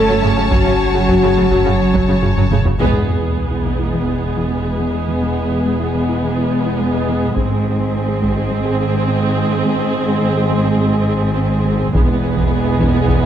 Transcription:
Already playing: sub bass F#1, trombone section F#3 C#4, cello section A3, french horn section A4, violin section C#5 A5
0.09 double bass section F#2, viola section F#3, synth arpeggio sound F#3
0.22 double bass section F#2, viola section C#3, synth arpeggio sound A3
0.36 double bass section F#2, viola section C#3, synth arpeggio sound F#4
0.50 double bass section F#2, viola section F#3, synth arpeggio sound F#3, cello section F#3, french horn section F#4, taiko
0.65 double bass section F#2, viola section C#3, synth arpeggio sound C#4
0.94 double bass section F#2, viola section C#3, synth arpeggio sound F#4
1.08 double bass section F#2, viola section F#3, synth arpeggio sound F#3, taiko
1.23 double bass section F#2, viola section C#3, synth arpeggio sound F#4
1.37 double bass section F#2, viola section C#3, synth arpeggio sound A3
1.52 double bass section F#2, synth arpeggio sound F#3, viola section F#3, taiko
1.65 double bass section F#2, viola section C#3, synth arpeggio sound F#4
1.93 double bass section F#2, viola section F#3, synth arpeggio sound F#3, taiko
2.08 double bass section F#2, viola section C#3, synth arpeggio sound C#4
2.22 double bass section F#2, viola section C#3, synth arpeggio sound F#4, taiko low-mid
2.37 double bass section F#2, synth arpeggio sound F#3, viola section F#3, taiko low-mid
2.51 double bass section F#2, viola section C#3, synth arpeggio sound A3, taiko mid
2.65 double bass section F#2, viola section C#3, synth arpeggio sound F#4, taiko low
2.79 double bass section E1, cello section E2, synth arpeggio sound E3, french horn section G#3 B3, viola section B3 G#4, taiko, sub drop
2.93 synth arpeggio sound G#3
3.22 synth arpeggio sound E3
3.36 synth arpeggio sound G#3
3.51 synth arpeggio sound E4
3.65 synth arpeggio sound E3, taiko
3.79 synth arpeggio sound E4
3.94 synth arpeggio sound E3
4.08 synth arpeggio sound E4
4.37 synth arpeggio sound E3
4.51 synth arpeggio sound G#3
4.65 synth arpeggio sound G#3
4.80 synth arpeggio sound E3
4.94 synth arpeggio sound G#3
5.08 synth arpeggio sound E3
5.23 synth arpeggio sound G#3
5.51 synth arpeggio sound E3
5.66 synth arpeggio sound G#3
5.80 synth arpeggio sound E4
5.94 synth arpeggio sound E3
6.09 synth arpeggio sound E4
6.23 synth arpeggio sound E3
6.38 synth arpeggio sound E4
6.67 synth arpeggio sound E3
6.80 synth arpeggio sound G#3
6.94 synth arpeggio sound G#3
7.09 synth arpeggio sound E3
7.23 synth arpeggio sound G#3
7.36 double bass section G#1, cello section G#2, french horn section G#3 C4, synth arpeggio sound G#3, viola section C4 G#4, taiko
7.51 synth arpeggio sound C4
7.80 synth arpeggio sound G#3
7.94 synth arpeggio sound C4
8.09 synth arpeggio sound G#4
8.22 synth arpeggio sound G#3, taiko
8.37 synth arpeggio sound G#4
8.51 synth arpeggio sound G#3
8.65 synth arpeggio sound G#4
8.95 synth arpeggio sound G#3
9.08 synth arpeggio sound C4
9.23 synth arpeggio sound C4
9.37 synth arpeggio sound G#3
9.51 synth arpeggio sound C4
9.66 synth arpeggio sound G#3
9.80 synth arpeggio sound C4
10.08 synth arpeggio sound G#3
10.23 synth arpeggio sound C4
10.37 synth arpeggio sound G#4
10.51 synth arpeggio sound G#3
10.66 synth arpeggio sound G#4
10.80 synth arpeggio sound G#3
10.94 synth arpeggio sound G#4
11.23 synth arpeggio sound G#3
11.38 synth arpeggio sound C4
11.51 synth arpeggio sound C4
11.65 synth arpeggio sound G#3
11.80 synth arpeggio sound C4
11.94 double bass section E1, cello section E2, synth arpeggio sound E3, french horn section G#3 B3, viola section B3 G#4, taiko
12.08 synth arpeggio sound G#3
12.37 synth arpeggio sound E3, taiko
12.51 synth arpeggio sound G#3
12.65 synth arpeggio sound E4
12.79 synth arpeggio sound E3, taiko
12.94 synth arpeggio sound E4
13.08 synth arpeggio sound E3, taiko

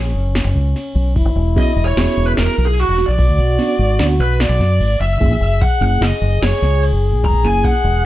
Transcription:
Already playing: fingered electric bass A#1, trombone C#4
0.14 fingered electric bass F#1, ride
0.35 snare, ride
0.44 fingered electric bass F#1
0.55 fingered electric bass C#2, ride
0.76 snare, ride
0.95 fingered electric bass B1, ride
1.16 fingered electric bass E1, trombone E4, kick, ride
1.25 fingered electric bass G#1
1.36 fingered electric bass E1, ride
1.56 tine electric piano B3 C#4 F#4 G#4, lead electric guitar D#5, kick, ride
1.76 fingered electric bass E1, ride
1.85 lead electric guitar C#5
1.96 fingered electric bass E1, tine electric piano B3 C#4 F#4 G#4, lead electric guitar C#5, snare, ride
2.17 fingered electric bass E1, ride
2.26 lead electric guitar B4
2.37 fingered electric bass E1, lead electric guitar A#4, snare, ride
2.58 fingered electric bass B1, ride
2.66 lead electric guitar G#4
2.78 lead electric guitar F#4, ride
2.88 fingered electric bass E1
2.98 snare, ride
3.06 fingered electric bass A#1, lead electric guitar D5
3.18 fingered electric bass B1, trombone F#4, kick, ride
3.29 fingered electric bass D2
3.38 fingered electric bass B1, ride
3.59 tine electric piano B3 C#4 D4 F#4, snare, ride
3.79 fingered electric bass G#1, ride
3.99 fingered electric bass D2, tine electric piano B3 C#4 D4 F#4, snare, ride
4.19 fingered electric bass B1, lead electric guitar B4, ride
4.40 lead electric guitar D5, snare, ride
4.49 fingered electric bass B1
4.60 fingered electric bass F#2, snare, ride
4.80 fingered electric bass G#1, ride
5.00 fingered electric bass F#1, lead electric guitar E5, ride
5.20 fingered electric bass F#1, tine electric piano A#3 C#4 E4 G#4, trombone G#4, kick, ride
5.30 fingered electric bass A#1
5.40 fingered electric bass F#1, ride
5.62 lead electric guitar F#5, kick, ride
5.81 fingered electric bass F#1, tine electric piano A#3 C#4 E4 G#4, lead electric guitar F#5, ride
6.01 fingered electric bass F#1, lead electric guitar D#5, snare, ride
6.21 fingered electric bass F#1, ride
6.42 fingered electric bass F#1, lead electric guitar C#5, snare, ride
6.62 fingered electric bass C#2, snare, ride
6.83 ride
6.93 fingered electric bass F#1
7.04 ride
7.13 fingered electric bass A#1
7.24 fingered electric bass E1, lead electric guitar A#5, kick, ride
7.33 fingered electric bass A#1
7.43 fingered electric bass F#1, tine electric piano A#3 C#4 E4 G#4, lead electric guitar G#5, ride
7.64 lead electric guitar F#5, kick, ride
7.84 fingered electric bass E1, ride

